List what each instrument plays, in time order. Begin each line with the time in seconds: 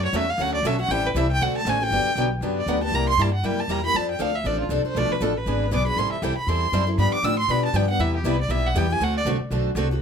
Already playing: upright bass F#2
0.05 violin C#5
0.13 upright bass E2, steel-string acoustic guitar D3 F#3 A3 C#4 F#4 A4, violin E5
0.30 violin F5
0.38 upright bass D2, steel-string acoustic guitar D3 F#3 A3 C#4 F#4 A4, violin F#5
0.55 violin D5
0.63 upright bass B1, steel-string acoustic guitar D3 F#3 A3 C#4 F#4 A4, violin E5
0.79 steel-string acoustic guitar A3 C#4 F#4, violin F#5
0.88 upright bass A1, steel-string acoustic guitar E3 G3 C4 E4 A4, violin G5
1.06 violin B4
1.15 upright bass C2, steel-string acoustic guitar E3 G3 C4 E4 A4, violin E5
1.32 violin G5
1.40 upright bass D2, steel-string acoustic guitar D3 A3 C4 F#4 A4, violin F#5
1.58 violin A5
1.65 upright bass A1, steel-string acoustic guitar D3 A3 C4 F#4 A4, violin G#5
1.81 steel-string acoustic guitar C4 F#4 A4, violin G5
1.91 upright bass G1, steel-string acoustic guitar D3 F#3 B3 D4 G4
2.05 muted upright bass stroke
2.15 upright bass B1, steel-string acoustic guitar D3 F#3 B3 D4 G4
2.41 upright bass F#2, steel-string acoustic guitar D3 F#3 B3 D4 G4
2.59 violin D5
2.66 upright bass D2, steel-string acoustic guitar D3 F#3 B3 D4 G4, violin F#5
2.82 steel-string acoustic guitar B3 D4 G4, violin A5
2.91 upright bass C2, steel-string acoustic guitar C3 G3 A#3 E4 G4, violin A#5
3.09 violin C6
3.17 upright bass G2, steel-string acoustic guitar C3 G3 A#3 E4 G4, violin A5
3.34 violin F#5
3.43 upright bass F#2, steel-string acoustic guitar C3 G3 A#3 E4 G4, violin G5
3.60 violin A5
3.68 upright bass E2, steel-string acoustic guitar C3 G3 A#3 E4 G4, violin A#5
3.84 steel-string acoustic guitar A#3 E4 G4, violin B5
3.94 upright bass F2, steel-string acoustic guitar F3 C4 D4 A4, violin A5
4.11 violin G5
4.19 upright bass D2, steel-string acoustic guitar F3 C4 D4 A4, violin F5
4.35 violin E5
4.44 upright bass A1, steel-string acoustic guitar F3 C4 D4 A4, violin D5
4.61 violin F4
4.69 upright bass C2, steel-string acoustic guitar F3 C4 D4 A4, violin A4
4.83 steel-string acoustic guitar C4 D4 A4, violin C5, muted upright bass stroke
4.95 upright bass B1, steel-string acoustic guitar B2 F3 A3 D4 A4 B4, violin D5
5.09 violin B4, muted upright bass stroke
5.20 upright bass A1, steel-string acoustic guitar B2 F3 A3 D4 A4 B4, violin A4
5.37 violin B4
5.46 upright bass G#1, steel-string acoustic guitar E3 B3 D4 G#4 B4
5.71 upright bass B1, steel-string acoustic guitar E3 B3 D4 G#4 B4, violin D6
5.86 steel-string acoustic guitar B3 D4 G#4, violin B5
5.96 upright bass A1, steel-string acoustic guitar E3 G3 C4 E4 A4, violin C6
6.12 violin E5, muted upright bass stroke
6.22 upright bass C2, steel-string acoustic guitar E3 G3 C4 E4 A4, violin G5
6.37 violin B5, muted upright bass stroke
6.47 upright bass E2, steel-string acoustic guitar E3 G3 C4 E4 A4, violin C6
6.72 upright bass F#2, steel-string acoustic guitar E3 G3 C4 E4 A4
6.87 steel-string acoustic guitar C4 E4 A4
6.98 upright bass G2, steel-string acoustic guitar D3 F3 B3 D4 G4, violin B5
7.14 violin D6
7.22 upright bass A2, steel-string acoustic guitar D3 F3 B3 D4 G4, violin E6
7.39 violin C6
7.48 upright bass B2, steel-string acoustic guitar D3 F3 B3 D4 G4, violin B5
7.65 violin A5
7.73 upright bass G2, steel-string acoustic guitar D3 F3 B3 D4 G4, violin G5
7.88 steel-string acoustic guitar B3 D4 G4, violin F#5
7.99 upright bass E2, steel-string acoustic guitar C3 G3 B3 E4 G4, violin E5
8.16 violin G4
8.24 upright bass C2, steel-string acoustic guitar C3 G3 B3 E4 G4, violin B4
8.41 violin D5
8.49 upright bass B1, steel-string acoustic guitar C3 G3 B3 E4 G4, violin E5
8.67 violin F#5
8.75 upright bass E2, steel-string acoustic guitar C3 G3 B3 E4 G4, violin G5
8.90 steel-string acoustic guitar B3 E4 G4, violin G#5
9.00 upright bass D2, steel-string acoustic guitar D3 A3 C4 F#4 A4, violin F#5
9.17 violin D5
9.25 upright bass C2, steel-string acoustic guitar D3 A3 C4 F#4 A4
9.40 muted upright bass stroke
9.51 upright bass B1, steel-string acoustic guitar D3 A3 C4 F#4 A4
9.75 upright bass C2, steel-string acoustic guitar D3 A3 C4 F#4 A4
9.91 steel-string acoustic guitar C4 F#4 A4